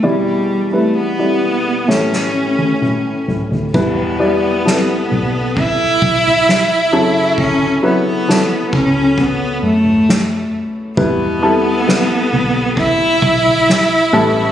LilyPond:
<<
  \new Staff \with { instrumentName = "Upright piano" } { \time 4/4 \key e \dorian \tempo 4 = 66 <g e' d''>8. <g e' b'>8 <g e' d''>8. <a g' cis''>2 | <g e' b'>8 <g e' d''>8 <g e' a' b'>2 r8 <fis e' a'>8~ | <fis e' a'>8 <fis e' b'>8 <fis e' a'>2 r4 | <g e' b'>8 <g e' a'>8 <g e' b'>2 r8 <g cis' a'>8 | }
  \new Staff \with { instrumentName = "Upright piano" } { \clef bass \time 4/4 \key e \dorian <e, b,>2 <a, e>2 | b,4. r2 cis8~ | cis4 r2. | b,4. r2 <a, e>8 | }
  \new Staff \with { instrumentName = "Cello" } { \time 4/4 \key e \dorian g8. a16 b4 cis'4. r8 | b2 e'2 | cis'8 b4 cis'8 b8 a4 r8 | b2 e'2 | }
  \new Staff \with { instrumentName = "Fingered electric bass" } { \clef bass \time 4/4 \key e \dorian r1 | e,4. b,,4 b,,4 fis,8~ | fis,8 r4 cis,4 fis,4 b,,8 | e,4. b,,4 b,,4 a,,8 | }
  \new DrumStaff \with { instrumentName = "Drums" } \drummode { \time 4/4 r4 r4 sn16 sn8 tommh16 toml8 tomfh16 tomfh16 | <cymc bd tomfh>4 sn8 tomfh8 <bd tomfh>8 bd16 tomfh16 sn4 | <bd tomfh>4 sn8 <bd tomfh>8 <bd tomfh>8. tomfh16 sn4 | <bd tomfh>4 sn8 tomfh8 <bd tomfh>8 bd16 tomfh16 sn4 | }
>>